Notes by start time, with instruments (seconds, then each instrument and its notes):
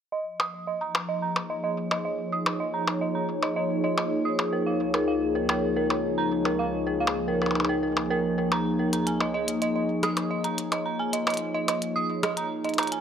0.12 ambient pad F3, synth bell D#5
0.39 ambient pad A#3 D#4, synth bell D#6, percussion blips
0.54 ambient pad G#4
0.67 synth bell D#5
0.81 synth bell A#5
0.95 ambient pad C#5, percussion blips
1.09 synth bell D#5
1.22 synth bell A#5
1.36 percussion blips
1.50 synth bell D#5
1.64 synth bell D#5
1.91 synth bell D#5, percussion blips
2.05 synth bell D#5
2.32 synth bell D#6
2.46 percussion blips
2.60 synth bell D#5
2.74 synth bell A#5
2.87 percussion blips
3.01 synth bell D#5
3.15 synth bell A#5
3.43 synth bell D#5, percussion blips
3.56 synth bell D#5
3.84 synth bell D#5
3.98 synth bell D#5, percussion blips
4.25 synth bell D#6
4.39 percussion blips
4.53 ambient pad C#2, synth bell A#4
4.66 synth bell F5
4.94 synth bell A#4, percussion blips
5.08 synth bell F5
5.35 synth bell A#4
5.49 synth bell A#4, percussion blips
5.76 synth bell A#4
5.90 synth bell A#4, percussion blips
6.18 synth bell A#5
6.45 synth bell A#4, percussion blips
6.59 synth bell F5
6.87 synth bell A#4
7.00 synth bell F5
7.07 percussion blips
7.28 synth bell A#4
7.42 synth bell A#4, percussion blips
7.46 percussion blips
7.51 percussion blips
7.55 percussion blips
7.60 percussion blips
7.65 percussion blips
7.69 synth bell A#4
7.83 synth bell A#4
7.97 percussion blips
8.10 synth bell A#4
8.38 synth bell A#4
8.52 synth bell A#5, percussion blips
8.79 synth bell A#4
8.93 synth bell A#5, closed hi-hat
9.07 synth bell G#5, closed hi-hat
9.20 synth bell D#5, percussion blips
9.34 synth bell D#5
9.48 closed hi-hat
9.62 synth bell D#5, closed hi-hat
9.76 synth bell D#5
10.03 synth bell D#6, cross-stick, closed hi-hat
10.17 closed hi-hat, percussion blips
10.31 synth bell D#5
10.44 synth bell A#5, closed hi-hat
10.58 closed hi-hat
10.72 synth bell D#5, closed hi-hat, percussion blips
10.86 synth bell A#5
10.99 synth bell G#5
11.13 synth bell D#5, closed hi-hat
11.27 synth bell D#5, closed hi-hat, percussion blips
11.30 closed hi-hat
11.34 closed hi-hat
11.37 closed hi-hat
11.54 synth bell D#5
11.68 synth bell D#5, closed hi-hat, percussion blips
11.82 closed hi-hat
11.96 synth bell D#6
12.23 synth bell D#5, cross-stick, closed hi-hat, percussion blips
12.37 synth bell A#5, closed hi-hat
12.64 synth bell D#5, closed hi-hat
12.69 closed hi-hat
12.74 closed hi-hat
12.78 synth bell A#5, closed hi-hat, percussion blips
12.83 closed hi-hat
12.87 closed hi-hat
12.92 synth bell G#5, closed hi-hat